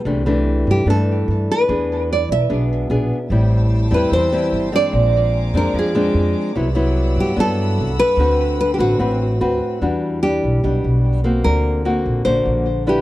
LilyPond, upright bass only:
\new Staff \with { instrumentName = "Upright bass" } { \clef bass \time 4/4 \key d \mixolydian \tempo 4 = 148 c,4. g,8 g,4 g,8 r8 | e,4. b,,8 b,,4 bes,,8 r8 | a,,4. e,8 e,4 g,,8 r8 | bes,,4. f,8 f,4 f,8 r8 |
c,4. g,8 g,4 c,8 r8 | d,4. a,,8 a,,4 ees,8 r8 | \key e \minor e,4. b,,8 b,,8 b,,4. | d,4. ais,,8 ais,,8 ais,,4. | }